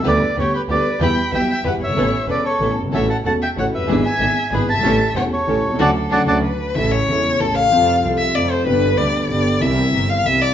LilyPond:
<<
  \new Staff \with { instrumentName = "Bandoneon" } { \time 3/4 \key a \mixolydian \tempo 4 = 188 d''4 cis''8 b'8 d''4 | b''4 g''8 g''8 fis''8 e''8~ | e''4 d''8 cis''4 r8 | e''8 a''8 a''8 g''8 fis''8 e''8~ |
e''8 gis''4. b'8 a''8~ | a''4 fis''8 cis''4. | <d'' fis'' a''>8 r8 <d'' fis'' a''>8 <d'' fis'' a''>8 r4 | \key a \phrygian r2. |
r2. | r2. | r2. | }
  \new Staff \with { instrumentName = "Violin" } { \time 3/4 \key a \mixolydian b'4 g'8 g'8 b'4 | g''4 e''8 e''8 b'8 cis''8~ | cis''4 b'8 a'4 r8 | cis''8 fis''8 fis''8 e''8 cis''8 b'8~ |
b'8 e''4. gis'8 e''8~ | e''4 cis''8 a'4.~ | a'2 b'4 | \key a \phrygian e''8 cis''4. a'8 f''8~ |
f''4 r8 e''8 d''8 c''8 | b'4 d''4 d''4 | e''4. f''8 e''8 d''8 | }
  \new Staff \with { instrumentName = "String section" } { \time 3/4 \key a \mixolydian <d' g' b'>8 r8 <d' g' b'>8 r8 <d' g' b'>8 r8 | <e' g' b'>8 r8 <e' g' b'>8 r8 <e' g' b'>8 r8 | <cis' a' b'>8 r8 <cis' a' b'>8 r8 <cis' a' b'>8 r8 | <cis' fis' a'>8 r8 <cis' fis' a'>8 r8 <cis' fis' a'>8 r8 |
<d' e' gis'>8 r8 <d' e' gis'>8 r8 <d' e' gis'>8 r8 | <cis' g' a'>8 r8 <cis' g' a'>8 r8 <cis' g' a'>8 r8 | <cis' d' fis'>8 r8 <cis' d' fis'>8 <cis' d' fis'>8 r4 | \key a \phrygian <cis' e' a'>4 <cis' e' a'>4 <cis' e' a'>4 |
<c' f' a'>4 <c' f' a'>4 <c' f' a'>4 | <d' g' b'>4 <d' g' b'>4 <d' g' b'>4 | <c' e' bes'>4 <c' e' bes'>4 <c' e' bes'>4 | }
  \new Staff \with { instrumentName = "Grand piano" } { \clef bass \time 3/4 \key a \mixolydian <d, d g b g'>8 r8 <d, d g b g'>8 r8 <d, d g b g'>8 r8 | <e, e g b g'>8 r8 <b,, b, e g b g'>8 r8 <e, e g b g'>8 r32 fis,,32 g,,32 gis,,32 | <a,, a, e b cis' a'>8 r8 <e,, e, e b cis' a'>8 r8 <a,, a, e b cis' a'>8 r32 fis,,32 g,,32 gis,,32 | <a,, a, e a cis' fis'>8 r8 <e,, e, e a cis' fis'>8 r8 <a,, a, e a cis' fis'>8 r32 f,,32 fis,,32 g,,32 |
<gis,, gis, e b d' gis'>8 r8 <gis,, gis, e b d' gis'>8 r8 <gis,, gis, e b d' gis'>8 r32 fis,,32 g,,32 gis,,32 | <a,, a, e a cis' g'>8 r8 <e,, e, e a cis' g'>8 r8 <a,, a, e a cis' g'>8 r32 b,,32 c,32 cis,32 | <cis d fis>8 r8 <cis d fis>8 <cis d fis>8 r4 | \key a \phrygian <a,, a, cis e a e'>4 <e,, e, cis e a e'>4 <a,, a, cis e a e'>4 |
<f, c f a f'>4 <c, c f a f'>4 <f, c f a f'>4 | <g,, g, d g b g'>4 <d, d g b g'>4 <g,, g, d g b g'>4 | <c, c e bes c' g'>4 <g,, g, e bes c' g'>4 <c, c e bes c' g'>4 | }
  \new Staff \with { instrumentName = "Double bass" } { \clef bass \time 3/4 \key a \mixolydian d,8 r8 d,8 r8 d,8 r8 | e,8 r8 b,,8 r8 e,8 g,,8 | a,,8 r8 e,,8 r8 a,,8 g,,8 | a,,8 r8 e,,8 r8 a,,8 fis,,8 |
gis,,8 r8 gis,,8 r8 gis,,8 g,,8 | a,,8 r8 e,,8 r8 a,,8 c,8 | d,8 r8 d,8 d,8 r4 | \key a \phrygian a,,4 e,,4 a,,4 |
f,4 c,4 f,4 | g,,4 d,4 g,,4 | c,4 g,,4 c,4 | }
>>